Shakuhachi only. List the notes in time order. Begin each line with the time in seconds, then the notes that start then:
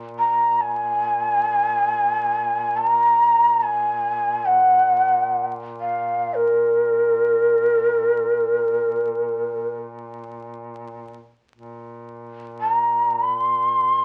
0.19 A#5
0.61 G#5
2.77 A#5
3.63 G#5
4.46 F#5
5.81 F5
6.34 A#4
12.61 A5
12.74 A#5
13.23 B5
13.34 C6